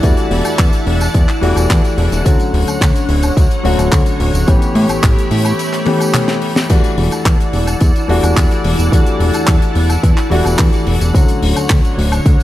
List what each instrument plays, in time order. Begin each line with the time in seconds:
Already playing: string machine E4 D5 F#5 A5
0.02 analog synth bass E2, grand piano E3 G3 A3 D4 F#4, kick, closed hi-hat, tambourine
0.17 closed hi-hat, tambourine
0.31 analog synth bass E1, open hi-hat
0.45 analog synth bass E2, closed hi-hat, tambourine, high woodblock
0.58 analog synth bass E2, kick, clap, closed hi-hat, tambourine
0.72 closed hi-hat, tambourine
0.87 analog synth bass E1, open hi-hat
1.00 closed hi-hat, tambourine, high woodblock
1.14 analog synth bass E2, kick, closed hi-hat, tambourine
1.29 clap, closed hi-hat, tambourine
1.41 analog synth bass E1, grand piano E3 G3 A3 D4 F#4, open hi-hat
1.56 analog synth bass E1, closed hi-hat, tambourine, high woodblock
1.70 analog synth bass E2, kick, clap, closed hi-hat, tambourine
1.84 closed hi-hat, tambourine
1.98 analog synth bass E1, open hi-hat
2.12 analog synth bass E1, closed hi-hat, tambourine
2.24 analog synth bass D2, grand piano D3 F#3 A3 C#4 F#4, string machine D3 C#5 F#5, kick, closed hi-hat, tambourine
2.40 closed hi-hat, tambourine
2.53 analog synth bass D1, open hi-hat
2.67 analog synth bass D2, closed hi-hat, tambourine, high woodblock
2.81 analog synth bass D2, kick, clap, closed hi-hat, tambourine
2.96 closed hi-hat, tambourine
3.09 analog synth bass D1, open hi-hat
3.23 closed hi-hat, tambourine, high woodblock
3.37 analog synth bass D2, kick, closed hi-hat, tambourine
3.51 closed hi-hat, tambourine
3.63 analog synth bass D1, grand piano D3 F#3 A3 C#4 F#4, open hi-hat
3.79 analog synth bass D1, closed hi-hat, tambourine, high woodblock
3.92 analog synth bass D2, kick, clap, closed hi-hat, tambourine
4.06 closed hi-hat, tambourine
4.20 analog synth bass D1, open hi-hat
4.34 analog synth bass D1, closed hi-hat, tambourine
4.47 analog synth bass A1, grand piano E3 A3 B3 C#4 G4, string machine A3 G4 B5, kick, closed hi-hat, tambourine
4.62 closed hi-hat, tambourine
4.75 analog synth bass A2, open hi-hat
4.89 analog synth bass A1, closed hi-hat, tambourine, high woodblock
5.03 analog synth bass A1, kick, clap, closed hi-hat, tambourine
5.18 closed hi-hat, tambourine
5.31 analog synth bass A2, open hi-hat
5.45 closed hi-hat, tambourine, high woodblock
5.59 closed hi-hat, tambourine
5.73 clap, closed hi-hat, tambourine
5.86 grand piano E3 A3 B3 C#4 G4, open hi-hat, high tom
6.00 closed hi-hat, tambourine, high woodblock
6.14 clap, closed hi-hat, mid tom
6.28 snare, closed hi-hat, tambourine
6.42 open hi-hat
6.56 snare, closed hi-hat, tambourine
6.69 analog synth bass E2, grand piano E3 G3 A3 D4 F#4, string machine E4 D5 F#5 A5, kick, closed hi-hat, crash, tambourine
6.84 closed hi-hat, tambourine
6.98 analog synth bass E1, open hi-hat
7.11 analog synth bass E2, closed hi-hat, tambourine, high woodblock
7.26 analog synth bass E2, kick, clap, closed hi-hat, tambourine
7.40 closed hi-hat, tambourine
7.53 analog synth bass E1, open hi-hat
7.67 closed hi-hat, tambourine, high woodblock
7.81 analog synth bass E2, kick, closed hi-hat, tambourine
7.96 closed hi-hat, tambourine
8.08 analog synth bass E1, grand piano E3 G3 A3 D4 F#4, open hi-hat
8.23 analog synth bass E1, closed hi-hat, tambourine, high woodblock
8.37 analog synth bass E2, kick, clap, closed hi-hat, tambourine
8.51 closed hi-hat, tambourine
8.64 analog synth bass E1, open hi-hat
8.79 analog synth bass E1, closed hi-hat, tambourine
8.91 analog synth bass E2, grand piano E3 G3 A3 D4 F#4, kick, closed hi-hat, tambourine
9.06 closed hi-hat, tambourine
9.20 analog synth bass E1, open hi-hat
9.34 analog synth bass E2, closed hi-hat, tambourine, high woodblock
9.47 analog synth bass E2, kick, clap, closed hi-hat, tambourine
9.62 closed hi-hat, tambourine
9.75 analog synth bass E1, open hi-hat
9.89 closed hi-hat, tambourine, high woodblock
10.03 analog synth bass E2, kick, closed hi-hat, tambourine
10.17 clap, closed hi-hat, tambourine
10.30 analog synth bass E1, grand piano E3 G3 A3 D4 F#4, open hi-hat
10.45 analog synth bass E1, closed hi-hat, tambourine, high woodblock
10.59 analog synth bass E2, kick, clap, closed hi-hat, tambourine
10.73 closed hi-hat, tambourine
10.87 analog synth bass E1, open hi-hat
11.01 analog synth bass E1, closed hi-hat, tambourine
11.13 analog synth bass D2, grand piano D3 F#3 A3 C#4 F#4, string machine D3 C#5, kick, closed hi-hat, tambourine
11.28 closed hi-hat, tambourine
11.43 analog synth bass D1, open hi-hat
11.56 analog synth bass D2, closed hi-hat, tambourine, high woodblock
11.70 analog synth bass D2, kick, clap, closed hi-hat, tambourine
11.85 closed hi-hat, tambourine
11.98 analog synth bass D1, open hi-hat
12.12 closed hi-hat, tambourine, high woodblock
12.25 analog synth bass D2, kick, closed hi-hat, tambourine
12.40 tambourine